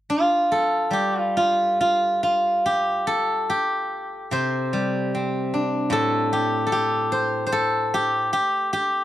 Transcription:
0, 0, Header, 1, 2, 480
1, 0, Start_track
1, 0, Tempo, 863309
1, 522, Time_signature, 4, 2, 24, 8
1, 1006, Tempo, 840336
1, 2446, Tempo, 803213
1, 5262, End_track
2, 0, Start_track
2, 0, Title_t, "Guzheng"
2, 0, Program_c, 0, 107
2, 54, Note_on_c, 0, 65, 51
2, 287, Note_on_c, 0, 69, 49
2, 504, Note_on_c, 0, 55, 36
2, 518, Note_on_c, 0, 67, 50
2, 663, Note_off_c, 0, 65, 0
2, 663, Note_off_c, 0, 67, 0
2, 663, Note_on_c, 0, 65, 50
2, 760, Note_off_c, 0, 65, 0
2, 760, Note_on_c, 0, 65, 51
2, 1002, Note_off_c, 0, 65, 0
2, 1004, Note_on_c, 0, 65, 52
2, 1244, Note_off_c, 0, 65, 0
2, 1246, Note_on_c, 0, 65, 52
2, 1490, Note_on_c, 0, 67, 58
2, 1519, Note_off_c, 0, 69, 0
2, 1726, Note_on_c, 0, 69, 62
2, 1955, Note_off_c, 0, 55, 0
2, 1967, Note_off_c, 0, 67, 0
2, 1969, Note_on_c, 0, 67, 57
2, 2436, Note_on_c, 0, 48, 40
2, 2442, Note_on_c, 0, 72, 65
2, 2685, Note_on_c, 0, 55, 35
2, 2700, Note_off_c, 0, 65, 0
2, 2934, Note_on_c, 0, 60, 31
2, 3002, Note_off_c, 0, 69, 0
2, 3167, Note_on_c, 0, 62, 32
2, 3353, Note_off_c, 0, 67, 0
2, 3383, Note_on_c, 0, 45, 41
2, 3397, Note_off_c, 0, 48, 0
2, 3399, Note_on_c, 0, 69, 71
2, 3625, Note_off_c, 0, 72, 0
2, 3631, Note_off_c, 0, 55, 0
2, 3639, Note_on_c, 0, 67, 61
2, 3839, Note_off_c, 0, 69, 0
2, 3842, Note_on_c, 0, 69, 50
2, 3872, Note_off_c, 0, 67, 0
2, 3875, Note_on_c, 0, 67, 57
2, 3877, Note_off_c, 0, 60, 0
2, 4112, Note_on_c, 0, 72, 60
2, 4120, Note_off_c, 0, 62, 0
2, 4317, Note_off_c, 0, 72, 0
2, 4319, Note_on_c, 0, 72, 49
2, 4352, Note_off_c, 0, 69, 0
2, 4355, Note_on_c, 0, 69, 62
2, 4600, Note_off_c, 0, 67, 0
2, 4603, Note_on_c, 0, 67, 69
2, 4833, Note_off_c, 0, 45, 0
2, 4833, Note_off_c, 0, 67, 0
2, 4835, Note_on_c, 0, 67, 64
2, 5072, Note_off_c, 0, 67, 0
2, 5075, Note_on_c, 0, 67, 60
2, 5262, Note_off_c, 0, 67, 0
2, 5262, Note_off_c, 0, 69, 0
2, 5262, Note_off_c, 0, 72, 0
2, 5262, End_track
0, 0, End_of_file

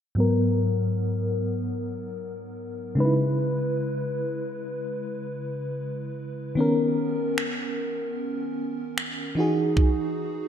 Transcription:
0, 0, Header, 1, 3, 480
1, 0, Start_track
1, 0, Key_signature, 5, "minor"
1, 0, Tempo, 800000
1, 101, Time_signature, 4, 2, 24, 8
1, 6289, End_track
2, 0, Start_track
2, 0, Title_t, "FM electric piano"
2, 0, Program_c, 0, 5
2, 90, Note_on_c, 0, 44, 64
2, 100, Note_on_c, 0, 54, 62
2, 110, Note_on_c, 0, 59, 61
2, 120, Note_on_c, 0, 70, 72
2, 208, Control_c, 0, 64, 127
2, 1752, Note_off_c, 0, 44, 0
2, 1757, Note_off_c, 0, 54, 0
2, 1762, Note_off_c, 0, 59, 0
2, 1767, Note_off_c, 0, 70, 0
2, 1771, Note_on_c, 0, 49, 71
2, 1782, Note_on_c, 0, 56, 65
2, 1789, Control_c, 0, 64, 0
2, 1791, Note_on_c, 0, 63, 49
2, 1801, Note_on_c, 0, 71, 75
2, 1825, Note_off_c, 0, 63, 0
2, 1831, Note_on_c, 0, 64, 63
2, 1895, Control_c, 0, 64, 127
2, 3672, Note_off_c, 0, 49, 0
2, 3678, Note_off_c, 0, 56, 0
2, 3687, Note_off_c, 0, 71, 0
2, 3702, Note_off_c, 0, 64, 0
2, 3932, Note_on_c, 0, 51, 68
2, 3942, Note_on_c, 0, 59, 62
2, 3949, Control_c, 0, 64, 0
2, 3952, Note_on_c, 0, 61, 66
2, 3963, Note_on_c, 0, 70, 78
2, 4042, Control_c, 0, 64, 127
2, 5593, Note_off_c, 0, 51, 0
2, 5598, Note_off_c, 0, 59, 0
2, 5603, Note_off_c, 0, 61, 0
2, 5608, Note_off_c, 0, 70, 0
2, 5611, Note_on_c, 0, 52, 75
2, 5621, Note_on_c, 0, 63, 63
2, 5629, Control_c, 0, 64, 0
2, 5631, Note_on_c, 0, 66, 62
2, 5641, Note_on_c, 0, 68, 75
2, 5739, Control_c, 0, 64, 127
2, 6289, Note_off_c, 0, 52, 0
2, 6289, Note_off_c, 0, 63, 0
2, 6289, Note_off_c, 0, 66, 0
2, 6289, Note_off_c, 0, 68, 0
2, 6289, End_track
3, 0, Start_track
3, 0, Title_t, "Drums"
3, 4427, Note_on_c, 9, 26, 108
3, 4487, Note_off_c, 9, 26, 0
3, 5386, Note_on_c, 9, 26, 103
3, 5446, Note_off_c, 9, 26, 0
3, 5861, Note_on_c, 9, 36, 111
3, 5921, Note_off_c, 9, 36, 0
3, 6289, End_track
0, 0, End_of_file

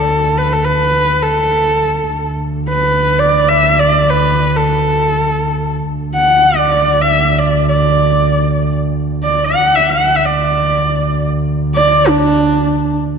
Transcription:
0, 0, Header, 1, 3, 480
1, 0, Start_track
1, 0, Tempo, 500000
1, 12658, End_track
2, 0, Start_track
2, 0, Title_t, "Horsehead fiddle"
2, 0, Program_c, 0, 110
2, 0, Note_on_c, 0, 69, 77
2, 360, Note_on_c, 0, 71, 69
2, 375, Note_off_c, 0, 69, 0
2, 504, Note_on_c, 0, 69, 68
2, 519, Note_off_c, 0, 71, 0
2, 618, Note_on_c, 0, 71, 80
2, 633, Note_off_c, 0, 69, 0
2, 1178, Note_on_c, 0, 69, 78
2, 1192, Note_off_c, 0, 71, 0
2, 2185, Note_off_c, 0, 69, 0
2, 2577, Note_on_c, 0, 71, 86
2, 3062, Note_on_c, 0, 74, 84
2, 3077, Note_off_c, 0, 71, 0
2, 3343, Note_on_c, 0, 76, 84
2, 3358, Note_off_c, 0, 74, 0
2, 3637, Note_on_c, 0, 74, 81
2, 3651, Note_off_c, 0, 76, 0
2, 3931, Note_on_c, 0, 71, 80
2, 3946, Note_off_c, 0, 74, 0
2, 4376, Note_on_c, 0, 69, 75
2, 4390, Note_off_c, 0, 71, 0
2, 5509, Note_off_c, 0, 69, 0
2, 5906, Note_on_c, 0, 78, 87
2, 6311, Note_on_c, 0, 74, 83
2, 6325, Note_off_c, 0, 78, 0
2, 6734, Note_on_c, 0, 76, 78
2, 6749, Note_off_c, 0, 74, 0
2, 7088, Note_on_c, 0, 74, 66
2, 7102, Note_off_c, 0, 76, 0
2, 7371, Note_off_c, 0, 74, 0
2, 7376, Note_on_c, 0, 74, 72
2, 8366, Note_off_c, 0, 74, 0
2, 8860, Note_on_c, 0, 74, 75
2, 9066, Note_on_c, 0, 78, 83
2, 9080, Note_off_c, 0, 74, 0
2, 9357, Note_on_c, 0, 76, 78
2, 9372, Note_off_c, 0, 78, 0
2, 9504, Note_on_c, 0, 78, 84
2, 9519, Note_off_c, 0, 76, 0
2, 9749, Note_on_c, 0, 76, 73
2, 9763, Note_off_c, 0, 78, 0
2, 9839, Note_on_c, 0, 74, 79
2, 9854, Note_off_c, 0, 76, 0
2, 10823, Note_off_c, 0, 74, 0
2, 11275, Note_on_c, 0, 74, 98
2, 11599, Note_on_c, 0, 62, 86
2, 11613, Note_off_c, 0, 74, 0
2, 12446, Note_off_c, 0, 62, 0
2, 12658, End_track
3, 0, Start_track
3, 0, Title_t, "Double bass"
3, 0, Program_c, 1, 43
3, 0, Note_on_c, 1, 38, 55
3, 2006, Note_off_c, 1, 38, 0
3, 2012, Note_on_c, 1, 38, 61
3, 5669, Note_off_c, 1, 38, 0
3, 5675, Note_on_c, 1, 38, 62
3, 9254, Note_off_c, 1, 38, 0
3, 9260, Note_on_c, 1, 38, 59
3, 12658, Note_off_c, 1, 38, 0
3, 12658, End_track
0, 0, End_of_file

